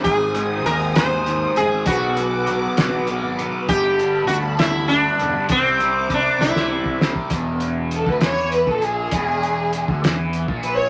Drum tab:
HH |x-x-x-x-x-x-|x-x-x-x-x-x-|x-x-x-x-x-x-|x-x-x-------|
SD |------o-----|------o-----|------o-----|------oo--o-|
BD |o-----------|o-----------|o-----------|o---o----o-o|

HH |x-x-x-x-x-x-|x-x-x-x-x-x-|
SD |------o-----|------o-----|
BD |o----o---o--|o----o---o--|